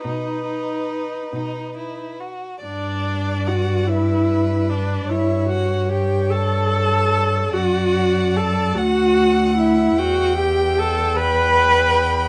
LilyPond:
<<
  \new Staff \with { instrumentName = "Violin" } { \time 6/8 \key b \major \tempo 4. = 49 b'2~ b'8 r8 | \key g \major d''4 fis''8 e''4 d''8 | e''8 fis''8 g''8 a''4. | fis''4 a''8 fis''4 e''8 |
fis''8 g''8 a''8 b''4. | }
  \new Staff \with { instrumentName = "Violin" } { \time 6/8 \key b \major dis'8 dis'4 dis'8 e'8 fis'8 | \key g \major d''4. b'4. | cis''2. | d''4. fis''4. |
g''4. g''4. | }
  \new Staff \with { instrumentName = "Viola" } { \time 6/8 \key b \major dis'2~ dis'16 r8. | \key g \major d'4 fis'8 e'4 d'8 | e'8 fis'8 g'8 a'4. | fis'4 a'8 fis'4 e'8 |
fis'8 g'8 a'8 b'4. | }
  \new Staff \with { instrumentName = "Cello" } { \clef bass \time 6/8 \key b \major b,4. b,4. | \key g \major g,2. | g,2. | fis,4. d,4. |
e,2. | }
>>